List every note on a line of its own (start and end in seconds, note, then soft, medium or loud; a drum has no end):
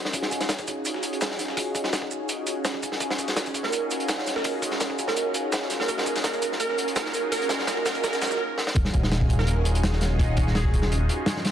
0.00 0.65 C#4 loud
0.00 0.65 D#4 medium
0.00 0.65 F4 medium
0.00 0.65 F#4 medium
0.00 0.65 G#4 loud
0.05 snare soft
0.13 kick loud
0.13 closed hi-hat medium
0.13 shaker medium
0.22 snare medium
0.31 kick medium
0.31 closed hi-hat medium
0.31 shaker medium
0.40 snare medium
0.40 closed hi-hat soft
0.49 snare loud
0.49 closed hi-hat medium
0.49 shaker medium
0.58 kick medium
0.58 closed hi-hat soft
0.67 1.37 C#4 loud
0.67 1.37 D#4 medium
0.67 1.37 F4 medium
0.67 1.37 F#4 medium
0.67 1.37 G#4 loud
0.67 kick medium
0.67 closed hi-hat medium
0.67 shaker medium
0.85 closed hi-hat medium
0.85 shaker medium
0.94 snare soft
1.03 closed hi-hat medium
1.03 shaker medium
1.13 closed hi-hat soft
1.21 snare loud
1.21 closed hi-hat medium
1.21 shaker medium
1.30 snare soft
1.39 2.09 C#4 loud
1.39 2.09 D#4 medium
1.39 2.09 F4 medium
1.39 2.09 F#4 medium
1.39 2.09 G#4 loud
1.39 snare soft
1.39 closed hi-hat medium
1.39 shaker medium
1.48 snare medium
1.57 kick loud
1.57 closed hi-hat medium
1.57 open hi-hat medium
1.75 kick medium
1.75 closed hi-hat medium
1.75 shaker medium
1.84 snare soft
1.84 snare medium
1.93 snare loud
1.93 closed hi-hat medium
1.93 shaker medium
2.02 kick medium
2.11 2.81 C#4 loud
2.11 2.81 D#4 medium
2.11 2.81 F4 medium
2.11 2.81 F#4 medium
2.11 2.81 G#4 loud
2.11 shaker medium
2.29 closed hi-hat medium
2.29 shaker medium
2.47 closed hi-hat medium
2.47 shaker medium
2.65 snare loud
2.65 closed hi-hat medium
2.65 shaker medium
2.74 kick medium
2.82 3.53 C#4 loud
2.82 3.52 D#4 medium
2.82 3.53 F4 medium
2.82 3.53 F#4 medium
2.82 3.53 G#4 loud
2.82 kick medium
2.82 closed hi-hat medium
2.82 shaker medium
2.92 snare soft
3.00 kick loud
3.00 closed hi-hat medium
3.00 shaker medium
3.10 snare medium
3.18 kick medium
3.18 closed hi-hat medium
3.18 shaker medium
3.28 snare medium
3.28 closed hi-hat soft
3.36 snare loud
3.36 closed hi-hat medium
3.36 shaker medium
3.46 kick medium
3.46 closed hi-hat soft
3.54 4.24 C#4 loud
3.54 4.24 D#4 medium
3.54 4.24 F4 medium
3.54 4.24 F#4 medium
3.54 4.24 G#4 loud
3.54 kick medium
3.54 closed hi-hat medium
3.54 shaker medium
3.63 3.71 A#4 medium
3.63 snare soft
3.73 closed hi-hat medium
3.73 shaker medium
3.90 closed hi-hat medium
3.90 shaker medium
4.00 closed hi-hat soft
4.08 snare loud
4.08 closed hi-hat medium
4.08 shaker medium
4.18 snare medium
4.26 4.96 C#4 loud
4.26 4.96 D#4 medium
4.26 4.96 F4 medium
4.26 4.96 F#4 medium
4.26 4.96 G#4 loud
4.26 snare soft
4.26 closed hi-hat medium
4.26 shaker medium
4.36 4.43 A#4 medium
4.36 snare medium
4.44 kick loud
4.44 closed hi-hat medium
4.44 open hi-hat medium
4.62 kick medium
4.62 closed hi-hat medium
4.62 shaker medium
4.71 snare soft
4.71 snare medium
4.80 snare loud
4.80 closed hi-hat medium
4.80 shaker medium
4.90 kick medium
4.98 5.68 C#4 loud
4.98 5.68 D#4 medium
4.98 5.68 F4 medium
4.98 5.68 F#4 medium
4.98 5.68 G#4 loud
4.98 kick medium
4.98 closed hi-hat medium
4.98 shaker medium
5.08 5.15 A#4 medium
5.08 snare medium
5.17 closed hi-hat medium
5.17 shaker medium
5.34 closed hi-hat medium
5.34 shaker medium
5.52 snare loud
5.52 closed hi-hat medium
5.52 shaker medium
5.61 snare soft
5.70 6.40 C#4 loud
5.70 6.40 D#4 medium
5.70 6.40 F4 medium
5.70 6.40 F#4 medium
5.70 6.40 G#4 loud
5.70 snare medium
5.70 closed hi-hat medium
5.70 shaker medium
5.80 5.87 A#4 medium
5.80 snare soft
5.88 6.10 A#4 medium
5.88 kick loud
5.88 closed hi-hat medium
5.88 shaker medium
5.98 snare medium
6.06 kick medium
6.06 closed hi-hat medium
6.06 shaker medium
6.16 snare medium
6.16 closed hi-hat soft
6.24 6.46 A#4 medium
6.24 snare loud
6.24 closed hi-hat medium
6.24 shaker medium
6.33 kick medium
6.33 closed hi-hat soft
6.42 7.12 C#4 loud
6.42 7.12 D#4 medium
6.42 7.12 F4 medium
6.42 7.12 F#4 medium
6.42 7.12 G#4 loud
6.42 kick medium
6.42 closed hi-hat medium
6.42 shaker medium
6.52 snare soft
6.60 6.82 A#4 medium
6.60 closed hi-hat medium
6.60 shaker medium
6.69 snare soft
6.78 closed hi-hat medium
6.78 shaker medium
6.88 closed hi-hat soft
6.96 7.18 A#4 medium
6.96 snare loud
6.96 closed hi-hat loud
6.96 shaker medium
7.05 snare medium
7.14 7.84 C#4 loud
7.14 7.84 D#4 medium
7.14 7.84 F4 medium
7.14 7.84 F#4 medium
7.14 7.84 G#4 loud
7.14 closed hi-hat medium
7.14 shaker medium
7.32 7.49 A#4 loud
7.32 closed hi-hat medium
7.32 open hi-hat medium
7.42 closed hi-hat soft
7.49 7.66 A#4 loud
7.49 snare loud
7.49 closed hi-hat medium
7.49 shaker medium
7.59 snare medium
7.67 7.84 A#4 medium
7.67 snare loud
7.67 closed hi-hat medium
7.67 shaker medium
7.77 kick medium
7.86 8.40 C#4 loud
7.86 8.40 D#4 medium
7.86 8.40 F4 medium
7.86 8.40 F#4 medium
7.86 8.40 G#4 loud
7.86 8.02 A#4 loud
7.86 snare loud
7.86 closed hi-hat medium
7.86 shaker medium
7.95 kick medium
7.95 closed hi-hat soft
8.04 8.20 A#4 loud
8.04 kick medium
8.04 snare loud
8.04 closed hi-hat medium
8.04 shaker medium
8.13 snare soft
8.13 closed hi-hat soft
8.21 8.38 A#4 loud
8.21 snare medium
8.21 snare loud
8.21 closed hi-hat medium
8.21 shaker medium
8.26 snare medium
8.26 shaker medium
8.31 snare loud
8.31 shaker medium
8.58 snare medium
8.67 snare medium
8.75 8.84 D#1 medium
8.75 9.26 C#4 loud
8.75 9.26 D#4 loud
8.75 9.26 F4 loud
8.75 9.26 F#4 loud
8.75 9.26 G#4 loud
8.75 kick loud
8.75 closed hi-hat medium
8.85 snare medium
8.94 9.02 D#1 medium
8.94 kick loud
8.94 closed hi-hat medium
9.03 9.37 D#1 medium
9.03 snare medium
9.11 snare loud
9.11 closed hi-hat medium
9.21 kick loud
9.29 9.99 C#4 loud
9.29 9.99 D#4 medium
9.29 9.99 F4 medium
9.29 9.99 F#4 medium
9.29 9.99 G#4 loud
9.29 kick medium
9.29 closed hi-hat medium
9.39 9.64 D#1 medium
9.39 9.60 A#4 medium
9.39 snare soft
9.47 closed hi-hat loud
9.65 10.36 D#1 medium
9.65 closed hi-hat medium
9.75 closed hi-hat soft
9.83 snare loud
9.83 closed hi-hat medium
9.92 snare medium
10.01 10.71 C#4 loud
10.01 10.71 D#4 medium
10.01 10.71 F4 medium
10.01 10.71 F#4 medium
10.01 10.71 G#4 loud
10.01 snare medium
10.01 closed hi-hat medium
10.19 kick loud
10.19 closed hi-hat medium
10.37 10.46 D#1 medium
10.37 kick medium
10.37 closed hi-hat medium
10.47 10.81 D#1 medium
10.47 snare soft
10.55 10.83 G#4 medium
10.55 snare loud
10.55 closed hi-hat medium
10.64 kick medium
10.73 11.43 C#4 loud
10.73 11.43 D#4 medium
10.73 11.43 F4 medium
10.73 11.43 F#4 medium
10.73 11.43 G#4 loud
10.73 kick loud
10.73 closed hi-hat medium
10.82 11.08 D#1 medium
10.82 snare medium
10.92 closed hi-hat medium
11.09 closed hi-hat medium
11.26 snare loud
11.26 closed hi-hat loud
11.37 snare soft
11.45 11.52 C#4 loud
11.45 11.52 D#4 medium
11.45 11.52 F4 loud
11.45 11.52 F#4 loud
11.45 11.52 G#4 loud
11.45 snare medium
11.45 closed hi-hat medium